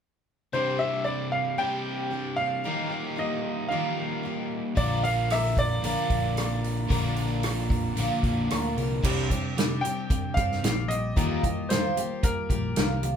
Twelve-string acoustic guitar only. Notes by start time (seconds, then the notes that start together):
0.53 C3 G3 C4 D4 G4
0.79 C4 D4 G4
1.04 G3 C4 D4 G4
1.58 C3 G3 C4 D4 G4
2.10 G3 C4 D4 G4
2.39 C4 D4 G4
2.64 D#3 F3 A#3 D#4 G4
2.90 A#3 D#4 G4
3.16 F3 A#3 D#4 G4
3.71 D#3 F3 A#3 D#4 G4
4.23 F3 A#3 D#4 G4
4.76 A#2 D3 F3 A#3 D4 A#4
5.04 F3 A#3 D4 A#4
5.31 F3 A#3 D4 A#4
5.84 A#2 D3 F3 A#3 D4 A#4
6.38 F3 A#3 D4 A#4
6.89 A#2 D3 F3 A#3 D4 A#4
7.43 F3 A#3 D4 A#4
7.98 A#2 D3 F3 A#3 D4 A#4
8.50 F3 A#3 D4 A#4
8.78 F3 A#3 D4 A#4
9.04 C3 G3 C4 D4 G4
9.30 C4 D4 G4
9.57 G3 C4 D4 G4
9.86 C4 D4 G4
10.38 C4 D4 G4
10.65 G3 C4 D4 G4
11.16 D#3 F3 A#3 F4 G4
11.44 A#3 F4 G4
11.71 F3 A#3 F4 G4
11.98 A#3 F4 G4
12.51 A#3 F4 G4
12.78 F3 A#3 F4 G4